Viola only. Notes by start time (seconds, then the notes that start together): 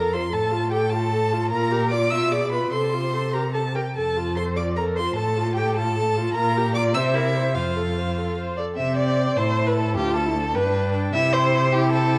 Already playing: A4
0.14 F4
0.32 A4
0.51 F4
0.71 A4
0.92 F4
1.12 A4
1.32 F4
1.52 F4
1.71 G4
1.92 F4
2.11 F4
2.31 G#4
2.51 F4
2.73 A4
2.93 F4
3.13 A4
3.34 G4
3.54 A4
3.75 A#4
3.96 A4
4.16 F4
4.36 A4
4.57 F4
4.78 A4
4.98 F4
5.17 A4
5.37 F4
5.57 A4
5.77 F4
5.97 A4
6.17 F4
6.37 F4
6.57 G4
6.76 F4
6.95 C5
7.15 A#4
7.35 C5
7.55 C5
7.76 A4
7.97 C5
8.18 A4
8.38 C5
8.59 A4
8.79 C4
9.38 E4
9.96 F4
10.26 E4
10.56 D4
11.14 E4
11.73 E4